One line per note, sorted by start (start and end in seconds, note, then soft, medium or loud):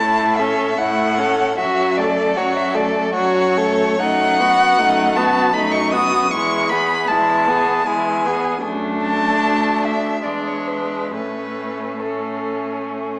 0.00 0.69 A2 medium
0.00 0.40 A3 soft
0.00 0.40 E4 soft
0.00 0.37 A5 medium
0.36 0.78 C#4 soft
0.36 0.78 A4 soft
0.36 0.79 E5 medium
0.77 1.48 A2 medium
0.77 1.20 A3 soft
0.77 1.21 E4 soft
0.77 1.57 F#5 medium
1.18 1.58 C#4 soft
1.18 1.58 A4 soft
1.58 2.27 F#2 medium
1.58 1.99 F#3 soft
1.58 2.01 F#4 medium
1.58 1.99 E5 medium
1.97 2.38 A3 soft
1.97 2.39 A4 soft
1.97 2.39 D5 medium
2.36 3.05 F#2 medium
2.36 2.76 F#3 soft
2.36 2.76 F#4 soft
2.36 2.58 C#5 medium
2.56 2.77 E5 medium
2.75 3.13 A3 soft
2.75 3.13 A4 soft
2.75 3.14 D5 medium
3.14 3.90 F#2 medium
3.14 3.58 F#3 soft
3.14 3.59 F#4 soft
3.14 4.01 C#5 medium
3.57 3.98 A3 soft
3.57 3.99 A4 medium
3.99 4.69 F#2 medium
3.99 4.42 A3 soft
3.99 4.42 D#4 medium
3.99 5.18 F#5 medium
4.40 4.80 B3 soft
4.40 4.80 F#4 soft
4.78 5.45 F#2 medium
4.78 5.18 A3 medium
4.78 5.18 D#4 medium
5.16 5.54 B3 soft
5.16 5.53 F#4 soft
5.16 5.55 A5 medium
5.53 6.23 F#2 medium
5.53 5.94 A3 soft
5.53 5.95 D#4 soft
5.53 5.73 B5 medium
5.71 5.92 C#6 medium
5.92 6.31 B3 soft
5.92 6.32 F#4 soft
5.92 6.32 D#6 medium
6.31 7.00 E2 medium
6.31 6.72 G#3 soft
6.31 6.73 E4 soft
6.31 6.71 C#6 medium
6.69 7.10 B3 soft
6.69 7.12 G#4 soft
6.69 7.09 B5 medium
7.08 7.78 E2 medium
7.08 7.49 G#3 soft
7.08 7.50 E4 soft
7.08 7.87 A5 medium
7.47 7.86 B3 soft
7.47 7.86 G#4 soft
7.86 8.56 E2 medium
7.86 8.27 G#3 soft
7.86 8.28 E4 soft
7.86 8.64 G#5 medium
8.26 8.63 B3 soft
8.26 8.64 G#4 soft
8.64 9.38 F#2 soft
8.64 10.20 A3 soft
8.64 10.20 D4 medium
9.02 9.85 A5 medium
9.42 10.26 D2 soft
9.84 10.24 E5 medium
10.23 11.13 E2 soft
10.23 11.14 G#3 soft
10.23 11.10 D4 soft
10.23 10.48 D5 soft
10.47 10.69 C#5 soft
10.67 11.11 B4 soft
11.11 13.19 A2 soft
11.11 12.00 A3 soft
11.11 11.99 C#4 soft
11.11 12.01 B4 medium
11.99 13.19 A3 soft
11.99 13.19 C#4 soft
11.99 12.88 A4 soft